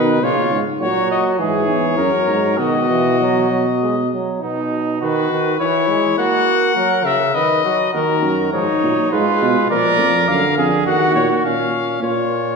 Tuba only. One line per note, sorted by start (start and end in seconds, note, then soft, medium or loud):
0.00 0.21 B2 medium
0.22 0.35 A#2 medium
0.51 0.64 G#2 medium
0.81 1.18 A#2 medium
1.39 1.67 G#2 medium
1.68 1.97 E2 medium
1.98 2.11 F#2 medium
2.28 2.58 G#2 medium
2.58 4.09 B2 medium
7.94 8.24 D#2 medium
8.23 8.53 F#2 medium
8.53 8.67 G#2 medium
8.83 8.96 A#2 medium
9.13 9.26 G#2 medium
9.42 9.55 B2 medium
9.71 10.01 A#2 medium
10.00 10.28 F2 medium
10.29 10.42 F#2 medium
10.58 10.71 F2 medium
10.87 11.15 D#2 medium
11.16 11.29 A#2 medium
11.45 12.01 A#2 medium
12.02 12.56 A#2 medium